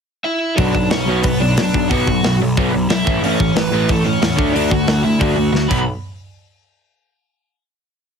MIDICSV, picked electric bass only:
0, 0, Header, 1, 2, 480
1, 0, Start_track
1, 0, Key_signature, 2, "minor"
1, 0, Tempo, 329489
1, 851, Time_signature, 4, 2, 24, 8
1, 11943, End_track
2, 0, Start_track
2, 0, Title_t, "Picked electric bass"
2, 0, Program_c, 0, 34
2, 847, Note_on_c, 0, 35, 83
2, 1051, Note_off_c, 0, 35, 0
2, 1087, Note_on_c, 0, 35, 69
2, 1291, Note_off_c, 0, 35, 0
2, 1336, Note_on_c, 0, 35, 72
2, 1537, Note_off_c, 0, 35, 0
2, 1550, Note_on_c, 0, 35, 90
2, 1762, Note_off_c, 0, 35, 0
2, 1806, Note_on_c, 0, 35, 91
2, 2011, Note_off_c, 0, 35, 0
2, 2040, Note_on_c, 0, 35, 83
2, 2248, Note_off_c, 0, 35, 0
2, 2284, Note_on_c, 0, 35, 90
2, 2491, Note_off_c, 0, 35, 0
2, 2538, Note_on_c, 0, 35, 73
2, 2739, Note_off_c, 0, 35, 0
2, 2785, Note_on_c, 0, 35, 84
2, 2983, Note_off_c, 0, 35, 0
2, 3021, Note_on_c, 0, 35, 81
2, 3221, Note_off_c, 0, 35, 0
2, 3250, Note_on_c, 0, 35, 83
2, 3455, Note_off_c, 0, 35, 0
2, 3501, Note_on_c, 0, 35, 91
2, 3701, Note_off_c, 0, 35, 0
2, 3753, Note_on_c, 0, 35, 85
2, 3948, Note_off_c, 0, 35, 0
2, 3990, Note_on_c, 0, 35, 83
2, 4187, Note_off_c, 0, 35, 0
2, 4215, Note_on_c, 0, 35, 85
2, 4418, Note_off_c, 0, 35, 0
2, 4481, Note_on_c, 0, 33, 80
2, 4670, Note_off_c, 0, 33, 0
2, 4679, Note_on_c, 0, 33, 85
2, 4889, Note_off_c, 0, 33, 0
2, 4951, Note_on_c, 0, 33, 81
2, 5148, Note_off_c, 0, 33, 0
2, 5154, Note_on_c, 0, 33, 83
2, 5367, Note_off_c, 0, 33, 0
2, 5405, Note_on_c, 0, 33, 92
2, 5613, Note_off_c, 0, 33, 0
2, 5672, Note_on_c, 0, 33, 88
2, 5869, Note_off_c, 0, 33, 0
2, 5896, Note_on_c, 0, 33, 82
2, 6100, Note_off_c, 0, 33, 0
2, 6143, Note_on_c, 0, 40, 88
2, 6389, Note_off_c, 0, 40, 0
2, 6389, Note_on_c, 0, 38, 75
2, 6588, Note_off_c, 0, 38, 0
2, 6630, Note_on_c, 0, 38, 86
2, 6828, Note_off_c, 0, 38, 0
2, 6871, Note_on_c, 0, 38, 78
2, 7069, Note_off_c, 0, 38, 0
2, 7111, Note_on_c, 0, 38, 80
2, 7309, Note_off_c, 0, 38, 0
2, 7355, Note_on_c, 0, 38, 90
2, 7551, Note_off_c, 0, 38, 0
2, 7596, Note_on_c, 0, 38, 84
2, 7791, Note_off_c, 0, 38, 0
2, 7812, Note_on_c, 0, 38, 86
2, 8017, Note_off_c, 0, 38, 0
2, 8046, Note_on_c, 0, 38, 83
2, 8254, Note_off_c, 0, 38, 0
2, 8318, Note_on_c, 0, 35, 66
2, 8532, Note_off_c, 0, 35, 0
2, 11943, End_track
0, 0, End_of_file